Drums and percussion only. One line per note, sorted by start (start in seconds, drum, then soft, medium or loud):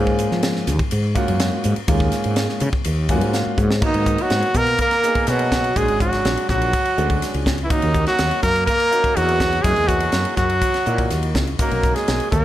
0.07 kick medium
0.19 hi-hat pedal medium
0.19 ride medium
0.31 snare soft
0.43 snare loud
0.43 hi-hat pedal medium
0.43 ride medium
0.56 snare soft
0.67 snare soft
0.67 hi-hat pedal medium
0.67 ride medium
0.79 kick medium
0.79 ride medium
0.91 hi-hat pedal medium
0.91 ride medium
1.16 kick medium
1.16 hi-hat pedal medium
1.16 ride medium
1.28 ride medium
1.40 snare loud
1.40 hi-hat pedal medium
1.40 ride medium
1.64 hi-hat pedal medium
1.64 ride medium
1.76 ride medium
1.88 kick loud
1.88 hi-hat pedal medium
1.88 ride medium
2.00 kick medium
2.12 snare soft
2.12 hi-hat pedal medium
2.12 ride medium
2.24 ride medium
2.36 snare medium
2.36 hi-hat pedal medium
2.36 ride medium
2.49 snare soft
2.60 hi-hat pedal medium
2.60 ride medium
2.73 kick medium
2.85 hi-hat pedal medium
2.85 ride medium
3.09 kick medium
3.09 hi-hat pedal medium
3.09 ride medium
3.21 ride medium
3.33 snare medium
3.33 hi-hat pedal medium
3.58 kick medium
3.58 hi-hat pedal medium
3.71 snare medium
3.82 kick loud
3.82 crash medium
3.94 ride medium
4.06 kick medium
4.06 hi-hat pedal medium
4.18 ride medium
4.30 snare medium
4.30 hi-hat pedal medium
4.30 ride medium
4.42 ride medium
4.54 kick medium
4.54 hi-hat pedal medium
4.67 ride medium
4.78 kick medium
4.78 hi-hat pedal medium
4.78 ride medium
4.91 snare soft
4.91 ride medium
5.03 snare soft
5.03 hi-hat pedal medium
5.15 kick medium
5.15 ride medium
5.27 snare soft
5.27 hi-hat pedal medium
5.27 ride medium
5.39 ride medium
5.52 kick medium
5.52 snare medium
5.52 hi-hat pedal medium
5.64 ride soft
5.76 kick medium
5.76 hi-hat pedal medium
5.76 ride medium
5.88 ride medium
6.00 kick medium
6.00 hi-hat pedal medium
6.13 snare soft
6.13 ride medium
6.25 snare medium
6.25 hi-hat pedal medium
6.25 ride medium
6.37 ride medium
6.49 kick medium
6.49 snare soft
6.49 hi-hat pedal medium
6.62 ride medium
6.73 kick medium
6.73 hi-hat pedal medium
6.73 ride medium
6.85 ride medium
6.98 hi-hat pedal medium
7.10 kick medium
7.10 ride medium
7.22 snare soft
7.22 hi-hat pedal medium
7.22 ride medium
7.34 ride medium
7.46 kick medium
7.46 snare medium
7.46 hi-hat pedal medium
7.58 ride soft
7.70 kick loud
7.70 hi-hat pedal medium
7.70 ride medium
7.82 ride medium
7.94 kick medium
7.94 hi-hat pedal medium
8.07 snare soft
8.07 ride medium
8.18 snare medium
8.18 hi-hat pedal medium
8.18 ride medium
8.31 ride medium
8.43 kick medium
8.43 hi-hat pedal medium
8.56 ride medium
8.67 kick medium
8.67 hi-hat pedal medium
8.67 ride medium
8.80 ride medium
8.92 hi-hat pedal medium
9.04 kick medium
9.04 ride medium
9.17 hi-hat pedal medium
9.17 ride medium
9.29 ride medium
9.40 kick medium
9.40 snare medium
9.40 hi-hat pedal medium
9.52 ride medium
9.64 kick loud
9.64 hi-hat pedal medium
9.64 ride medium
9.76 ride medium
9.88 kick medium
9.88 hi-hat pedal medium
10.00 ride medium
10.12 snare medium
10.12 hi-hat pedal medium
10.12 ride medium
10.25 ride medium
10.37 kick medium
10.37 snare soft
10.37 hi-hat pedal medium
10.50 ride medium
10.61 kick medium
10.61 hi-hat pedal medium
10.61 ride medium
10.74 snare soft
10.74 ride medium
10.86 hi-hat pedal medium
10.98 kick medium
10.98 ride medium
11.10 snare soft
11.10 hi-hat pedal medium
11.10 ride medium
11.23 ride medium
11.35 kick medium
11.35 snare medium
11.35 hi-hat pedal medium
11.47 ride soft
11.59 kick loud
11.59 hi-hat pedal medium
11.59 ride medium
11.71 ride medium
11.83 kick medium
11.83 hi-hat pedal medium
11.96 snare soft
11.96 ride medium
12.08 snare medium
12.08 hi-hat pedal medium
12.08 ride medium
12.20 ride medium
12.32 kick medium
12.32 hi-hat pedal medium